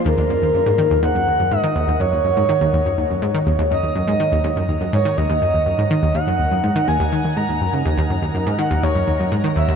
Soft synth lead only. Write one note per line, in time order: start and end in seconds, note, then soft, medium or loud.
0.06 0.99 A#4 loud
1.03 1.53 F#5 loud
1.52 2.02 D#5 loud
2.00 3.47 C#5 loud
3.71 3.94 D#5 loud
3.95 4.64 D#5 loud
4.93 5.19 C#5 medium
5.17 5.90 D#5 loud
5.90 6.16 D#5 loud
6.15 6.89 F#5 loud
6.88 7.38 G#5 loud
7.37 7.73 A#5 loud
8.59 8.85 F#5 loud
8.83 9.32 C#5 loud
9.56 9.76 E5 medium